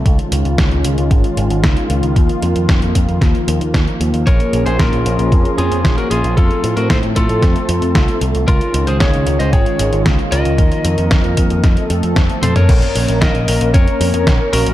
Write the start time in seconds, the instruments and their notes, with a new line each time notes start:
0.06 picked electric bass C#2, analog synth pad D#3 G#3 C#4 F4, kick, closed hi-hat
0.19 closed hi-hat
0.32 picked electric bass C#2, closed hi-hat
0.45 picked electric bass C#2, closed hi-hat
0.58 picked electric bass C#2, kick, snare, closed hi-hat
0.71 picked electric bass C#2, closed hi-hat
0.84 picked electric bass C#2, closed hi-hat
0.98 picked electric bass C#2, closed hi-hat
1.11 picked electric bass G#1, kick, closed hi-hat
1.24 closed hi-hat
1.37 picked electric bass G#1, closed hi-hat
1.50 picked electric bass G#1, closed hi-hat
1.63 picked electric bass C#2, kick, snare, closed hi-hat
1.77 closed hi-hat
1.90 picked electric bass C#2, closed hi-hat
2.03 picked electric bass C#2, closed hi-hat
2.16 picked electric bass D#2, analog synth pad F3 A#3, kick, closed hi-hat
2.29 closed hi-hat
2.42 picked electric bass F2, closed hi-hat
2.56 picked electric bass F2, closed hi-hat
2.69 picked electric bass F2, kick, snare, closed hi-hat
2.82 picked electric bass F2, closed hi-hat
2.95 picked electric bass F2, kick, closed hi-hat
3.08 picked electric bass F2, closed hi-hat
3.21 picked electric bass D#2, kick, snare, closed hi-hat
3.35 closed hi-hat
3.48 picked electric bass D#2, closed hi-hat
3.61 picked electric bass D#2, closed hi-hat
3.74 picked electric bass D#2, kick, snare, closed hi-hat
3.88 closed hi-hat
4.00 picked electric bass D#2, closed hi-hat
4.14 picked electric bass D#2, closed hi-hat
4.27 picked electric bass A#1, analog synth pad C#4 G#4, lead electric guitar A#4 C#5, kick, closed hi-hat
4.40 closed hi-hat
4.53 picked electric bass A#1, closed hi-hat
4.66 picked electric bass A#1, lead electric guitar G#4 C5, closed hi-hat
4.79 picked electric bass A#1, lead electric guitar F4 A#4, kick, snare, closed hi-hat
4.93 picked electric bass A#1, closed hi-hat
5.06 picked electric bass A#1, closed hi-hat
5.19 picked electric bass A#1, closed hi-hat
5.32 picked electric bass F2, kick, closed hi-hat
5.45 closed hi-hat
5.58 picked electric bass F2, lead electric guitar F4 G#4, closed hi-hat
5.71 picked electric bass F2, closed hi-hat
5.85 picked electric bass A#1, kick, snare, closed hi-hat
5.98 lead electric guitar F#4 A#4, closed hi-hat
6.10 picked electric bass A#1, lead electric guitar F4 G#4, closed hi-hat
6.24 picked electric bass A#1, closed hi-hat
6.37 picked electric bass F2, analog synth pad A3 C4 A4, lead electric guitar F4 A4, kick, closed hi-hat
6.51 closed hi-hat
6.64 picked electric bass A2, closed hi-hat
6.77 picked electric bass A2, lead electric guitar F#4 A#4, closed hi-hat
6.90 picked electric bass A2, lead electric guitar A4 C5, kick, snare, closed hi-hat
7.03 picked electric bass A2, closed hi-hat
7.16 picked electric bass A2, lead electric guitar F4 A4, kick, closed hi-hat
7.29 picked electric bass A2, closed hi-hat
7.42 picked electric bass F2, kick, snare, closed hi-hat
7.56 closed hi-hat
7.69 picked electric bass F2, closed hi-hat
7.82 picked electric bass F2, closed hi-hat
7.95 picked electric bass C2, kick, snare, closed hi-hat
8.08 closed hi-hat
8.21 picked electric bass C2, closed hi-hat
8.35 picked electric bass C2, closed hi-hat
8.48 picked electric bass C#2, analog synth pad D#3 G#3 C#4 F4, lead electric guitar F4 A#4, kick, closed hi-hat
8.61 closed hi-hat
8.74 picked electric bass C#2, closed hi-hat
8.87 picked electric bass C#2, lead electric guitar G#4 C5, closed hi-hat
9.00 lead electric guitar G#4 C#5, kick, snare, closed hi-hat
9.14 picked electric bass C#2, closed hi-hat
9.27 picked electric bass C#2, closed hi-hat
9.39 picked electric bass C#2, lead electric guitar C5 D#5, closed hi-hat
9.53 picked electric bass G#1, lead electric guitar G#4 C#5, kick, closed hi-hat
9.66 closed hi-hat
9.79 picked electric bass G#1, closed hi-hat
9.93 picked electric bass G#1, closed hi-hat
10.06 picked electric bass C#2, kick, snare, closed hi-hat
10.19 closed hi-hat
10.32 picked electric bass C#2, lead electric guitar A#4 D#5, closed hi-hat
10.45 picked electric bass C#2, closed hi-hat
10.58 picked electric bass D#2, analog synth pad D#3 F3 A#3, kick, closed hi-hat
10.72 closed hi-hat
10.85 picked electric bass F2, closed hi-hat
10.98 picked electric bass F2, closed hi-hat
11.11 picked electric bass F2, kick, snare, closed hi-hat
11.24 picked electric bass F2, closed hi-hat
11.37 picked electric bass F2, kick, closed hi-hat
11.50 picked electric bass F2, closed hi-hat
11.64 picked electric bass F2, analog synth pad A3 C4 A4, kick, snare, closed hi-hat
11.77 closed hi-hat
11.90 picked electric bass F2, closed hi-hat
12.03 picked electric bass F2, closed hi-hat
12.16 picked electric bass F2, kick, snare, closed hi-hat
12.30 closed hi-hat
12.42 picked electric bass F2, lead electric guitar A4 C5, closed hi-hat, high tom
12.56 picked electric bass F2, lead electric guitar A#4 C#5, closed hi-hat, mid tom
12.69 picked electric bass A#1, analog synth pad A#3 C#4 A#4, kick, closed hi-hat, crash
12.82 closed hi-hat
12.95 picked electric bass A#1, open hi-hat
13.08 picked electric bass A#1, closed hi-hat
13.21 picked electric bass A#1, lead electric guitar A#4 D#5, kick, snare, closed hi-hat
13.35 picked electric bass A#1, closed hi-hat
13.48 picked electric bass A#1, open hi-hat
13.61 picked electric bass A#1, closed hi-hat
13.74 picked electric bass F2, lead electric guitar A#4 C#5, kick, closed hi-hat
13.88 closed hi-hat
14.01 picked electric bass F2, open hi-hat
14.14 picked electric bass F2, closed hi-hat
14.27 picked electric bass A#1, kick, snare, closed hi-hat
14.53 picked electric bass A#1, lead electric guitar F#4 A#4, open hi-hat
14.66 picked electric bass A#1, closed hi-hat